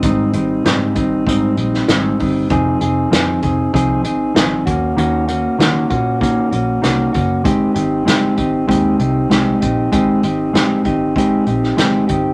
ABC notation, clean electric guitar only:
X:1
M:4/4
L:1/8
Q:1/4=97
K:Ab
V:1 name="Clean electric guitar"
[A,,G,CE] [G,CE] [A,,G,CE] [G,CE] [A,,G,CE] [G,CE] [A,,G,CE] [G,CE] | [F,CEA] [CEA] [F,CEA] [CEA] [F,CEA] [CEA] [F,CEA] [B,D_G] | [E,B,D_G] [B,DG] [E,B,DG] [B,DG] [E,B,DG] [B,DG] [E,B,DG] [B,DG] | [A,CEG] [CEG] [A,CEG] [CEG] [A,CEG] [CEG] [A,CEG] [CEG] |
[A,CEG] [CEG] [A,CEG] [CEG] [A,CEG] [CEG] [A,CEG] [CEG] |]